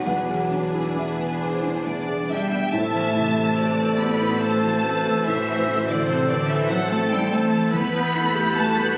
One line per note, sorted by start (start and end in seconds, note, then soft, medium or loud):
0.00 0.85 B4 medium
0.05 2.71 E2 soft
0.05 2.27 E2 soft
0.05 2.77 E3 soft
0.05 0.96 F#3 medium
0.05 2.50 D4 soft
0.05 2.54 G#4 soft
0.05 0.94 F#5 medium
0.29 2.78 B2 soft
0.29 0.66 G#4 soft
0.51 0.88 D4 soft
0.51 1.85 D4 soft
0.74 0.97 E4 soft
0.74 2.77 E4 soft
0.97 2.31 E3 soft
0.97 1.33 D4 soft
0.97 1.39 B4 medium
0.97 2.27 E5 soft
0.97 2.78 B5 soft
1.18 1.55 B3 soft
1.41 1.77 G#4 soft
1.41 1.86 C5 soft
1.41 2.78 D5 soft
1.63 1.99 D4 soft
1.63 2.78 B4 soft
1.85 2.22 B3 soft
1.85 2.29 D4 soft
1.85 2.30 D5 soft
2.08 2.51 B3 soft
2.08 2.44 G#4 soft
2.29 2.71 G3 medium
2.29 2.65 D4 soft
2.29 2.77 D4 soft
2.29 2.74 E5 medium
2.29 2.71 G5 medium
2.52 2.74 B3 soft
2.52 2.78 B3 soft
2.72 7.69 A1 medium
2.72 5.25 A2 medium
2.72 5.22 A2 medium
2.72 4.39 C3 medium
2.72 3.98 A3 medium
2.72 3.55 E4 medium
2.72 7.70 C5 medium
2.72 3.55 E5 medium
2.72 4.00 A5 medium
2.72 7.70 E6 medium
2.76 4.02 A3 medium
2.93 4.61 E3 soft
2.93 3.30 C5 soft
3.15 7.05 C3 soft
3.15 3.50 E4 soft
3.36 3.76 E4 soft
3.36 3.71 A4 soft
3.58 6.91 F#4 medium
3.58 3.97 A4 soft
3.58 3.92 C5 soft
3.58 4.43 D5 medium
3.78 4.19 E4 soft
3.78 4.01 B4 soft
3.99 4.42 B3 medium
3.99 6.07 A4 soft
3.99 4.34 A4 soft
3.99 4.42 B5 medium
4.03 4.42 A3 medium
4.20 5.86 E4 medium
4.20 4.56 E4 soft
4.41 5.26 A3 medium
4.41 5.11 A3 medium
4.41 4.82 C4 soft
4.41 4.85 C4 medium
4.41 4.84 C5 medium
4.41 4.77 C5 soft
4.41 5.26 A5 medium
4.62 5.04 E3 soft
4.62 4.97 E4 soft
4.83 5.23 A3 medium
4.83 5.46 C4 soft
4.83 5.18 C4 soft
4.83 5.26 B4 medium
5.05 5.66 E3 soft
5.05 5.39 A4 soft
5.25 7.77 A2 medium
5.25 7.70 A2 medium
5.25 5.87 E3 medium
5.25 5.88 E3 medium
5.25 6.07 A3 medium
5.25 6.09 C5 medium
5.25 5.87 E5 medium
5.48 6.91 C4 soft
5.48 5.81 C5 soft
5.67 7.11 E3 soft
5.88 6.09 D3 medium
5.88 6.10 D3 medium
5.88 6.29 E4 medium
5.88 6.21 A4 soft
5.88 6.09 D5 medium
6.08 6.29 C3 medium
6.08 6.30 C3 medium
6.08 6.89 C4 medium
6.08 7.73 A4 medium
6.08 6.49 A4 medium
6.08 6.29 C5 medium
6.08 6.42 C5 soft
6.29 6.50 D3 medium
6.29 6.70 E4 medium
6.29 6.50 B4 soft
6.29 6.50 D5 medium
6.48 6.71 E3 medium
6.48 7.77 A4 medium
6.48 6.83 C5 medium
6.48 6.70 E5 medium
6.69 6.91 F#3 medium
6.69 6.92 F#3 medium
6.69 7.03 E4 soft
6.69 8.33 E4 soft
6.69 6.91 F#5 medium
6.90 7.12 A3 medium
6.90 7.71 C4 medium
6.90 7.31 C4 soft
6.90 8.52 E4 medium
6.90 7.25 C5 soft
6.90 7.11 A5 medium
7.11 7.52 E3 soft
7.11 7.32 G3 medium
7.11 7.45 E4 soft
7.11 7.32 G5 medium
7.32 7.73 A3 medium
7.32 7.76 C4 soft
7.32 7.66 C5 medium
7.32 7.73 A5 medium
7.53 7.77 E3 soft
7.53 7.74 A4 soft
7.72 8.98 E2 medium
7.72 8.14 B3 medium
7.72 8.54 B3 medium
7.72 8.55 B3 medium
7.72 8.14 B4 medium
7.72 8.98 B4 medium
7.72 8.54 B5 loud
7.72 8.98 G6 medium
7.94 8.27 B4 medium
8.14 8.56 A3 medium
8.14 8.48 E4 medium
8.14 8.98 A4 medium
8.34 8.75 E4 medium
8.34 8.68 G4 medium
8.55 8.98 G3 medium
8.55 8.77 A3 medium
8.55 8.98 F#4 medium
8.55 8.89 B4 medium
8.55 8.77 A5 medium
8.76 8.97 B3 medium
8.76 8.98 B3 medium
8.76 8.98 E4 soft
8.76 8.97 A4 soft
8.76 8.97 B5 medium